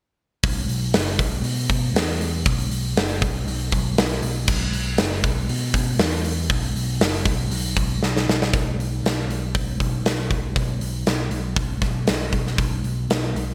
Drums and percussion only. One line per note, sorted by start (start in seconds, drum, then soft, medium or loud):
0.43 kick loud
0.43 open hi-hat medium
0.69 open hi-hat medium
0.94 snare loud
0.94 open hi-hat medium
1.19 kick medium
1.19 open hi-hat medium
1.44 open hi-hat medium
1.70 kick medium
1.70 open hi-hat medium
1.96 snare loud
1.96 open hi-hat medium
2.21 open hi-hat medium
2.46 kick loud
2.46 open hi-hat medium
2.71 open hi-hat medium
2.97 snare loud
2.97 open hi-hat medium
3.22 kick medium
3.22 open hi-hat medium
3.48 open hi-hat medium
3.72 kick medium
3.72 open hi-hat medium
3.98 snare loud
3.98 open hi-hat medium
4.23 open hi-hat medium
4.48 kick loud
4.48 crash loud
4.73 open hi-hat medium
4.98 snare loud
4.98 open hi-hat medium
5.24 kick medium
5.24 open hi-hat medium
5.49 open hi-hat medium
5.74 kick medium
5.74 open hi-hat medium
5.99 snare loud
5.99 open hi-hat medium
6.25 open hi-hat medium
6.50 kick loud
6.50 open hi-hat medium
6.76 open hi-hat medium
7.01 snare loud
7.01 open hi-hat medium
7.25 kick medium
7.25 open hi-hat medium
7.51 open hi-hat medium
7.77 kick medium
7.77 open hi-hat medium
8.03 snare medium
8.17 snare medium
8.29 snare medium
8.42 snare medium
8.54 kick loud
8.54 open hi-hat medium
8.80 open hi-hat medium
9.06 snare loud
9.06 open hi-hat medium
9.30 open hi-hat medium
9.55 kick loud
9.55 open hi-hat medium
9.80 kick medium
9.80 open hi-hat medium
10.06 snare loud
10.06 open hi-hat medium
10.31 kick medium
10.31 open hi-hat medium
10.56 kick loud
10.56 open hi-hat medium
10.81 open hi-hat medium
11.07 snare loud
11.07 open hi-hat medium
11.31 open hi-hat medium
11.56 kick loud
11.56 open hi-hat medium
11.82 kick medium
11.82 snare soft
11.82 open hi-hat medium
12.07 snare loud
12.07 open hi-hat medium
12.32 kick medium
12.32 open hi-hat medium
12.47 snare soft
12.58 kick loud
12.58 open hi-hat medium
12.84 open hi-hat soft
13.10 snare loud
13.10 open hi-hat medium
13.36 open hi-hat medium